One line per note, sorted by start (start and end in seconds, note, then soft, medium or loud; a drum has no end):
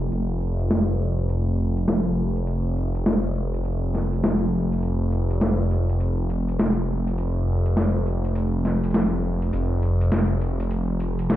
0.01 closed hi-hat soft
0.12 9.51 F1 medium
0.12 closed hi-hat medium
0.41 closed hi-hat soft
0.60 closed hi-hat soft
0.71 snare loud
0.71 closed hi-hat medium
1.00 closed hi-hat soft
1.18 closed hi-hat soft
1.29 closed hi-hat medium
1.77 closed hi-hat soft
1.88 snare loud
1.88 closed hi-hat medium
2.36 closed hi-hat soft
2.47 closed hi-hat medium
2.76 closed hi-hat soft
2.95 closed hi-hat soft
3.06 snare loud
3.06 closed hi-hat medium
3.35 closed hi-hat soft
3.54 closed hi-hat soft
3.65 closed hi-hat medium
3.94 snare soft
3.94 closed hi-hat medium
4.13 closed hi-hat soft
4.24 snare loud
4.24 closed hi-hat medium
4.72 closed hi-hat soft
4.74 closed hi-hat soft
4.78 closed hi-hat soft
4.79 closed hi-hat soft
4.81 closed hi-hat soft
4.83 closed hi-hat medium
5.12 closed hi-hat soft
5.30 closed hi-hat soft
5.41 snare loud
5.41 closed hi-hat medium
5.71 closed hi-hat soft
5.89 closed hi-hat soft
6.00 closed hi-hat medium
6.30 closed hi-hat medium
6.48 closed hi-hat soft
6.59 snare loud
6.59 closed hi-hat medium
7.07 closed hi-hat soft
7.18 closed hi-hat medium
7.66 closed hi-hat soft
7.77 snare loud
7.77 closed hi-hat medium
8.06 closed hi-hat soft
8.25 closed hi-hat soft
8.35 closed hi-hat medium
8.65 snare soft
8.65 closed hi-hat medium
8.84 closed hi-hat soft
8.91 snare loud
8.91 closed hi-hat soft
8.94 closed hi-hat medium
9.42 closed hi-hat medium
9.53 11.36 F1 medium
9.53 closed hi-hat medium
9.83 closed hi-hat soft
10.01 closed hi-hat medium
10.12 snare loud
10.12 closed hi-hat medium
10.41 closed hi-hat soft
10.60 closed hi-hat medium
10.71 closed hi-hat medium
11.00 closed hi-hat medium
11.19 closed hi-hat medium
11.30 snare loud
11.30 closed hi-hat medium